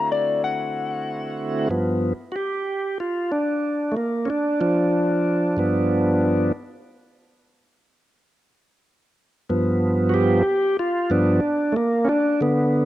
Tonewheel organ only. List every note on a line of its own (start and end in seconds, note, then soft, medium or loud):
0.00 1.68 D3 medium
0.00 1.69 A3 medium
0.00 1.68 C4 medium
0.00 1.69 E4 medium
0.00 1.68 F#4 medium
1.69 2.13 G2 soft
1.69 2.13 F3 soft
1.69 2.13 B3 soft
2.32 2.35 F#4 soft
2.32 2.98 G4 medium
3.00 3.31 F4 medium
3.32 3.95 D4 medium
3.92 3.96 A3 soft
3.97 4.28 A#3 medium
4.26 4.29 C#4 soft
4.30 4.60 D4 medium
4.61 5.57 F3 medium
4.61 6.52 D4 medium
5.57 6.51 G2 soft
5.57 6.52 F3 soft
5.57 6.52 B3 soft
9.49 10.43 G2 soft
9.49 10.43 F3 soft
9.49 10.43 B3 medium
10.09 10.13 F#4 medium
10.14 10.77 G4 medium
10.79 11.11 F4 medium
11.10 11.40 G2 soft
11.10 11.40 F3 soft
11.10 11.40 B3 soft
11.10 11.75 D4 medium
11.72 11.76 A3 medium
11.77 12.08 A#3 medium
12.05 12.09 C#4 medium
12.09 12.41 D4 medium
12.41 12.85 D3 medium
12.41 12.85 B3 medium